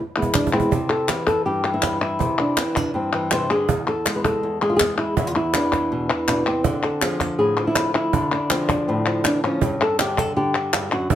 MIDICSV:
0, 0, Header, 1, 4, 480
1, 0, Start_track
1, 0, Tempo, 371058
1, 928, Time_signature, 4, 2, 24, 8
1, 14425, End_track
2, 0, Start_track
2, 0, Title_t, "Nylon-string guitar"
2, 0, Program_c, 0, 24
2, 215, Note_on_c, 0, 64, 49
2, 222, Note_on_c, 0, 59, 47
2, 228, Note_on_c, 0, 52, 41
2, 230, Note_on_c, 0, 56, 45
2, 435, Note_off_c, 0, 59, 0
2, 440, Note_on_c, 0, 62, 77
2, 669, Note_off_c, 0, 64, 0
2, 682, Note_off_c, 0, 56, 0
2, 682, Note_off_c, 0, 62, 0
2, 684, Note_off_c, 0, 52, 0
2, 685, Note_on_c, 0, 64, 52
2, 688, Note_on_c, 0, 59, 54
2, 688, Note_on_c, 0, 60, 82
2, 698, Note_on_c, 0, 56, 46
2, 699, Note_on_c, 0, 52, 44
2, 917, Note_off_c, 0, 64, 0
2, 918, Note_off_c, 0, 59, 0
2, 922, Note_on_c, 0, 48, 64
2, 923, Note_off_c, 0, 56, 0
2, 924, Note_off_c, 0, 52, 0
2, 1156, Note_on_c, 0, 69, 85
2, 1392, Note_on_c, 0, 52, 53
2, 1405, Note_off_c, 0, 48, 0
2, 1413, Note_off_c, 0, 69, 0
2, 1413, Note_on_c, 0, 67, 83
2, 1635, Note_off_c, 0, 67, 0
2, 1640, Note_on_c, 0, 69, 87
2, 1648, Note_off_c, 0, 60, 0
2, 1879, Note_off_c, 0, 69, 0
2, 1884, Note_on_c, 0, 67, 85
2, 1894, Note_on_c, 0, 43, 54
2, 2118, Note_off_c, 0, 52, 0
2, 2123, Note_on_c, 0, 52, 55
2, 2242, Note_off_c, 0, 67, 0
2, 2247, Note_on_c, 0, 64, 83
2, 2586, Note_off_c, 0, 64, 0
2, 2601, Note_on_c, 0, 64, 82
2, 2823, Note_off_c, 0, 43, 0
2, 2834, Note_on_c, 0, 48, 67
2, 2846, Note_on_c, 0, 60, 45
2, 3087, Note_off_c, 0, 60, 0
2, 3102, Note_on_c, 0, 62, 78
2, 3141, Note_off_c, 0, 52, 0
2, 3321, Note_off_c, 0, 48, 0
2, 3330, Note_on_c, 0, 52, 56
2, 3337, Note_off_c, 0, 62, 0
2, 3337, Note_on_c, 0, 60, 72
2, 3565, Note_off_c, 0, 64, 0
2, 3576, Note_off_c, 0, 60, 0
2, 3576, Note_on_c, 0, 62, 87
2, 3803, Note_on_c, 0, 43, 56
2, 3812, Note_off_c, 0, 62, 0
2, 3820, Note_on_c, 0, 60, 82
2, 4044, Note_off_c, 0, 52, 0
2, 4049, Note_on_c, 0, 52, 59
2, 4295, Note_on_c, 0, 48, 55
2, 4304, Note_on_c, 0, 72, 89
2, 4532, Note_off_c, 0, 48, 0
2, 4533, Note_on_c, 0, 68, 90
2, 4534, Note_off_c, 0, 52, 0
2, 4536, Note_off_c, 0, 72, 0
2, 4539, Note_on_c, 0, 50, 61
2, 4737, Note_off_c, 0, 43, 0
2, 4774, Note_off_c, 0, 50, 0
2, 4775, Note_off_c, 0, 60, 0
2, 4777, Note_on_c, 0, 40, 69
2, 5011, Note_off_c, 0, 68, 0
2, 5025, Note_on_c, 0, 69, 84
2, 5256, Note_on_c, 0, 56, 58
2, 5261, Note_off_c, 0, 69, 0
2, 5261, Note_on_c, 0, 68, 85
2, 5373, Note_off_c, 0, 68, 0
2, 5378, Note_on_c, 0, 71, 79
2, 5488, Note_off_c, 0, 71, 0
2, 5494, Note_on_c, 0, 69, 96
2, 5728, Note_off_c, 0, 40, 0
2, 5734, Note_on_c, 0, 40, 58
2, 5957, Note_off_c, 0, 56, 0
2, 5971, Note_off_c, 0, 69, 0
2, 5973, Note_on_c, 0, 56, 55
2, 5980, Note_on_c, 0, 68, 96
2, 6074, Note_on_c, 0, 65, 79
2, 6148, Note_off_c, 0, 68, 0
2, 6158, Note_off_c, 0, 65, 0
2, 6164, Note_on_c, 0, 68, 93
2, 6438, Note_off_c, 0, 68, 0
2, 6443, Note_on_c, 0, 64, 77
2, 6662, Note_off_c, 0, 56, 0
2, 6672, Note_off_c, 0, 40, 0
2, 6686, Note_off_c, 0, 64, 0
2, 6688, Note_on_c, 0, 40, 70
2, 6702, Note_on_c, 0, 64, 88
2, 6817, Note_off_c, 0, 64, 0
2, 6817, Note_on_c, 0, 65, 83
2, 6926, Note_off_c, 0, 65, 0
2, 6931, Note_on_c, 0, 64, 79
2, 7181, Note_on_c, 0, 52, 57
2, 7188, Note_on_c, 0, 62, 76
2, 7650, Note_off_c, 0, 64, 0
2, 7655, Note_on_c, 0, 47, 57
2, 7875, Note_off_c, 0, 52, 0
2, 7891, Note_on_c, 0, 52, 54
2, 7892, Note_off_c, 0, 47, 0
2, 8119, Note_off_c, 0, 62, 0
2, 8122, Note_on_c, 0, 47, 57
2, 8135, Note_on_c, 0, 62, 74
2, 8362, Note_off_c, 0, 47, 0
2, 8367, Note_on_c, 0, 48, 56
2, 8368, Note_off_c, 0, 62, 0
2, 8373, Note_on_c, 0, 60, 76
2, 8581, Note_off_c, 0, 52, 0
2, 8596, Note_off_c, 0, 48, 0
2, 8601, Note_on_c, 0, 50, 70
2, 8609, Note_off_c, 0, 40, 0
2, 8849, Note_on_c, 0, 69, 81
2, 9087, Note_on_c, 0, 53, 59
2, 9092, Note_off_c, 0, 69, 0
2, 9092, Note_on_c, 0, 68, 78
2, 9319, Note_off_c, 0, 68, 0
2, 9319, Note_on_c, 0, 69, 80
2, 9331, Note_off_c, 0, 60, 0
2, 9549, Note_off_c, 0, 69, 0
2, 9555, Note_on_c, 0, 68, 88
2, 9564, Note_on_c, 0, 45, 59
2, 9790, Note_off_c, 0, 53, 0
2, 9805, Note_on_c, 0, 53, 57
2, 9920, Note_off_c, 0, 68, 0
2, 9925, Note_on_c, 0, 64, 88
2, 10264, Note_off_c, 0, 64, 0
2, 10280, Note_on_c, 0, 64, 75
2, 10496, Note_off_c, 0, 50, 0
2, 10498, Note_off_c, 0, 45, 0
2, 10498, Note_off_c, 0, 53, 0
2, 10524, Note_on_c, 0, 50, 68
2, 10782, Note_on_c, 0, 62, 79
2, 11002, Note_on_c, 0, 53, 59
2, 11007, Note_on_c, 0, 60, 68
2, 11232, Note_off_c, 0, 62, 0
2, 11244, Note_off_c, 0, 64, 0
2, 11247, Note_on_c, 0, 62, 76
2, 11472, Note_off_c, 0, 60, 0
2, 11487, Note_on_c, 0, 60, 74
2, 11496, Note_on_c, 0, 45, 63
2, 11708, Note_off_c, 0, 53, 0
2, 11723, Note_on_c, 0, 53, 62
2, 11958, Note_off_c, 0, 62, 0
2, 11965, Note_off_c, 0, 53, 0
2, 11975, Note_on_c, 0, 52, 57
2, 11977, Note_on_c, 0, 62, 75
2, 12201, Note_off_c, 0, 62, 0
2, 12207, Note_on_c, 0, 61, 82
2, 12212, Note_off_c, 0, 52, 0
2, 12220, Note_on_c, 0, 53, 59
2, 12416, Note_off_c, 0, 50, 0
2, 12422, Note_off_c, 0, 45, 0
2, 12446, Note_off_c, 0, 60, 0
2, 12451, Note_on_c, 0, 43, 70
2, 12453, Note_off_c, 0, 53, 0
2, 12704, Note_on_c, 0, 69, 86
2, 12921, Note_on_c, 0, 50, 59
2, 12935, Note_off_c, 0, 69, 0
2, 12940, Note_on_c, 0, 67, 78
2, 13165, Note_off_c, 0, 61, 0
2, 13179, Note_off_c, 0, 67, 0
2, 13179, Note_on_c, 0, 69, 83
2, 13394, Note_off_c, 0, 50, 0
2, 13404, Note_off_c, 0, 69, 0
2, 13408, Note_on_c, 0, 50, 61
2, 13409, Note_on_c, 0, 67, 83
2, 13636, Note_off_c, 0, 50, 0
2, 13651, Note_on_c, 0, 50, 59
2, 13886, Note_off_c, 0, 43, 0
2, 13901, Note_on_c, 0, 43, 59
2, 14124, Note_off_c, 0, 43, 0
2, 14125, Note_off_c, 0, 67, 0
2, 14129, Note_on_c, 0, 42, 60
2, 14139, Note_on_c, 0, 66, 74
2, 14364, Note_off_c, 0, 42, 0
2, 14366, Note_off_c, 0, 50, 0
2, 14369, Note_off_c, 0, 66, 0
2, 14369, Note_on_c, 0, 40, 70
2, 14382, Note_on_c, 0, 64, 77
2, 14425, Note_off_c, 0, 40, 0
2, 14425, Note_off_c, 0, 64, 0
2, 14425, End_track
3, 0, Start_track
3, 0, Title_t, "Cajon"
3, 289, Note_on_c, 9, 36, 76
3, 418, Note_off_c, 9, 36, 0
3, 450, Note_on_c, 9, 36, 89
3, 580, Note_off_c, 9, 36, 0
3, 605, Note_on_c, 9, 36, 84
3, 734, Note_off_c, 9, 36, 0
3, 773, Note_on_c, 9, 36, 67
3, 902, Note_off_c, 9, 36, 0
3, 931, Note_on_c, 9, 36, 89
3, 1060, Note_off_c, 9, 36, 0
3, 1408, Note_on_c, 9, 38, 85
3, 1537, Note_off_c, 9, 38, 0
3, 1652, Note_on_c, 9, 36, 72
3, 1652, Note_on_c, 9, 38, 29
3, 1781, Note_off_c, 9, 36, 0
3, 1781, Note_off_c, 9, 38, 0
3, 2131, Note_on_c, 9, 38, 25
3, 2261, Note_off_c, 9, 38, 0
3, 2367, Note_on_c, 9, 36, 59
3, 2367, Note_on_c, 9, 38, 87
3, 2497, Note_off_c, 9, 36, 0
3, 2497, Note_off_c, 9, 38, 0
3, 2850, Note_on_c, 9, 36, 85
3, 2979, Note_off_c, 9, 36, 0
3, 3328, Note_on_c, 9, 38, 84
3, 3457, Note_off_c, 9, 38, 0
3, 3577, Note_on_c, 9, 36, 76
3, 3707, Note_off_c, 9, 36, 0
3, 4286, Note_on_c, 9, 38, 90
3, 4415, Note_off_c, 9, 38, 0
3, 4769, Note_on_c, 9, 36, 87
3, 4898, Note_off_c, 9, 36, 0
3, 5246, Note_on_c, 9, 38, 84
3, 5376, Note_off_c, 9, 38, 0
3, 5490, Note_on_c, 9, 36, 70
3, 5620, Note_off_c, 9, 36, 0
3, 6215, Note_on_c, 9, 36, 60
3, 6215, Note_on_c, 9, 38, 92
3, 6345, Note_off_c, 9, 36, 0
3, 6345, Note_off_c, 9, 38, 0
3, 6685, Note_on_c, 9, 36, 92
3, 6814, Note_off_c, 9, 36, 0
3, 7161, Note_on_c, 9, 38, 93
3, 7290, Note_off_c, 9, 38, 0
3, 7407, Note_on_c, 9, 36, 74
3, 7407, Note_on_c, 9, 38, 31
3, 7537, Note_off_c, 9, 36, 0
3, 7537, Note_off_c, 9, 38, 0
3, 8125, Note_on_c, 9, 38, 82
3, 8255, Note_off_c, 9, 38, 0
3, 8594, Note_on_c, 9, 36, 89
3, 8723, Note_off_c, 9, 36, 0
3, 9083, Note_on_c, 9, 38, 91
3, 9212, Note_off_c, 9, 38, 0
3, 9318, Note_on_c, 9, 36, 75
3, 9318, Note_on_c, 9, 38, 31
3, 9447, Note_off_c, 9, 36, 0
3, 9447, Note_off_c, 9, 38, 0
3, 9553, Note_on_c, 9, 38, 27
3, 9682, Note_off_c, 9, 38, 0
3, 10029, Note_on_c, 9, 38, 94
3, 10158, Note_off_c, 9, 38, 0
3, 10520, Note_on_c, 9, 36, 92
3, 10649, Note_off_c, 9, 36, 0
3, 10997, Note_on_c, 9, 38, 88
3, 11126, Note_off_c, 9, 38, 0
3, 11239, Note_on_c, 9, 36, 77
3, 11369, Note_off_c, 9, 36, 0
3, 11482, Note_on_c, 9, 38, 26
3, 11611, Note_off_c, 9, 38, 0
3, 11953, Note_on_c, 9, 38, 84
3, 12083, Note_off_c, 9, 38, 0
3, 12438, Note_on_c, 9, 36, 92
3, 12567, Note_off_c, 9, 36, 0
3, 12922, Note_on_c, 9, 38, 90
3, 13051, Note_off_c, 9, 38, 0
3, 13166, Note_on_c, 9, 36, 76
3, 13296, Note_off_c, 9, 36, 0
3, 13405, Note_on_c, 9, 38, 28
3, 13534, Note_off_c, 9, 38, 0
3, 13884, Note_on_c, 9, 38, 89
3, 14013, Note_off_c, 9, 38, 0
3, 14360, Note_on_c, 9, 36, 92
3, 14425, Note_off_c, 9, 36, 0
3, 14425, End_track
4, 0, Start_track
4, 0, Title_t, "Drums"
4, 440, Note_on_c, 9, 39, 80
4, 569, Note_off_c, 9, 39, 0
4, 1402, Note_on_c, 9, 39, 74
4, 1532, Note_off_c, 9, 39, 0
4, 2357, Note_on_c, 9, 39, 73
4, 2487, Note_off_c, 9, 39, 0
4, 3328, Note_on_c, 9, 39, 80
4, 3457, Note_off_c, 9, 39, 0
4, 4285, Note_on_c, 9, 39, 75
4, 4414, Note_off_c, 9, 39, 0
4, 5256, Note_on_c, 9, 39, 81
4, 5386, Note_off_c, 9, 39, 0
4, 6206, Note_on_c, 9, 39, 83
4, 6336, Note_off_c, 9, 39, 0
4, 7167, Note_on_c, 9, 39, 77
4, 7297, Note_off_c, 9, 39, 0
4, 8126, Note_on_c, 9, 39, 75
4, 8255, Note_off_c, 9, 39, 0
4, 9079, Note_on_c, 9, 39, 77
4, 9208, Note_off_c, 9, 39, 0
4, 10037, Note_on_c, 9, 39, 76
4, 10167, Note_off_c, 9, 39, 0
4, 10999, Note_on_c, 9, 39, 78
4, 11128, Note_off_c, 9, 39, 0
4, 11968, Note_on_c, 9, 39, 80
4, 12097, Note_off_c, 9, 39, 0
4, 12928, Note_on_c, 9, 39, 76
4, 13057, Note_off_c, 9, 39, 0
4, 13885, Note_on_c, 9, 39, 79
4, 14014, Note_off_c, 9, 39, 0
4, 14425, End_track
0, 0, End_of_file